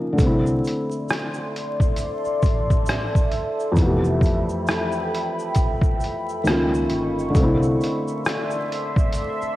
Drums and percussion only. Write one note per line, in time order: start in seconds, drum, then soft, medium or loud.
0.18 kick loud
0.18 closed hi-hat medium
0.18 shaker medium
0.46 shaker medium
0.64 closed hi-hat medium
0.64 shaker soft
0.91 shaker soft
1.09 cross-stick loud
1.09 shaker medium
1.13 closed hi-hat medium
1.34 shaker medium
1.56 closed hi-hat medium
1.80 kick medium
1.80 shaker soft
1.96 closed hi-hat medium
1.96 shaker medium
2.25 shaker soft
2.42 kick medium
2.42 closed hi-hat soft
2.42 shaker medium
2.70 kick medium
2.70 shaker soft
2.86 cross-stick loud
2.86 closed hi-hat medium
2.86 shaker medium
3.15 kick medium
3.15 shaker medium
3.32 closed hi-hat medium
3.60 shaker medium
3.76 kick loud
3.76 closed hi-hat medium
3.76 shaker medium
4.04 shaker soft
4.21 kick medium
4.21 shaker soft
4.26 closed hi-hat medium
4.49 shaker medium
4.67 cross-stick loud
4.67 shaker medium
4.71 closed hi-hat medium
4.92 shaker soft
5.15 closed hi-hat medium
5.39 shaker soft
5.55 kick medium
5.55 closed hi-hat medium
5.55 shaker medium
5.82 kick medium
5.82 shaker soft
6.00 closed hi-hat soft
6.00 shaker soft
6.29 shaker soft
6.45 cross-stick loud
6.45 closed hi-hat medium
6.45 shaker medium
6.75 shaker medium
6.90 closed hi-hat medium
7.19 shaker soft
7.35 kick loud
7.35 closed hi-hat medium
7.35 shaker medium
7.63 shaker medium
7.81 closed hi-hat medium
7.81 shaker soft
8.08 shaker soft
8.25 cross-stick loud
8.25 closed hi-hat medium
8.25 shaker medium
8.51 shaker soft
8.72 closed hi-hat medium
8.96 kick medium
8.96 shaker soft
9.12 closed hi-hat medium
9.12 shaker medium
9.42 shaker soft